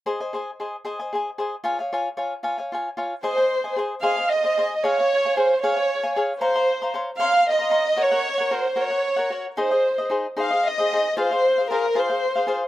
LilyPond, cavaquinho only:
\new Staff \with { instrumentName = "Cavaquinho" } { \time 6/8 \key aes \major \tempo 4. = 76 <aes' c'' ees'' aes''>16 <c'' ees'' aes''>16 <aes' c'' ees'' aes''>16 r16 <aes' c'' ees'' aes''>16 r16 <aes' c'' ees'' aes''>16 <c'' ees'' aes''>16 <aes' c'' ees'' aes''>16 r16 <aes' c'' ees'' aes''>16 r16 | <f' des'' f'' aes''>16 <des'' f'' aes''>16 <f' des'' f'' aes''>16 r16 <f' des'' f'' aes''>16 r16 <f' des'' f'' aes''>16 <des'' f'' aes''>16 <f' des'' f'' aes''>16 r16 <f' des'' f'' aes''>16 r16 | <aes' c'' ees'' aes''>16 <c'' ees'' aes''>16 r16 <c'' ees'' aes''>16 <aes' c'' ees'' aes''>16 r16 <aes' c'' ees'' aes''>16 <c'' ees'' aes''>16 r16 <c'' ees'' aes''>16 <aes' c'' ees'' aes''>16 r16 | <aes' des'' f'' aes''>16 <des'' f'' aes''>16 r16 <des'' f'' aes''>16 <aes' des'' f'' aes''>16 r16 <aes' des'' f'' aes''>16 <des'' f'' aes''>16 r16 <des'' f'' aes''>16 <aes' des'' f'' aes''>16 r16 |
<des'' f'' bes'' c'''>16 <f'' bes'' c'''>16 r16 <f'' bes'' c'''>16 <des'' f'' bes'' c'''>16 r16 <des'' f'' bes'' c'''>16 <f'' bes'' c'''>16 r16 <f'' bes'' c'''>16 <des'' f'' bes'' c'''>16 r16 | <ges' bes' des'' ges''>16 <bes' des'' ges''>16 r16 <bes' des'' ges''>16 <ges' bes' des'' ges''>16 r16 <ges' bes' des'' ges''>16 <bes' des'' ges''>16 r16 <bes' des'' ges''>16 <ges' bes' des'' ges''>16 r16 | <ees' aes' c'' ees''>16 <aes' c'' ees''>16 r16 <aes' c'' ees''>16 <ees' aes' c'' ees''>16 r16 <ees' aes' c'' ees''>16 <aes' c'' ees''>16 r16 <aes' c'' ees''>16 <ees' aes' c'' ees''>16 r16 | <f' aes' c'' f''>16 <aes' c'' f''>16 r16 <aes' c'' f''>16 <f' aes' c'' f''>16 r16 <f' aes' c'' f''>16 <aes' c'' f''>16 r16 <aes' c'' f''>16 <f' aes' c'' f''>16 r16 | }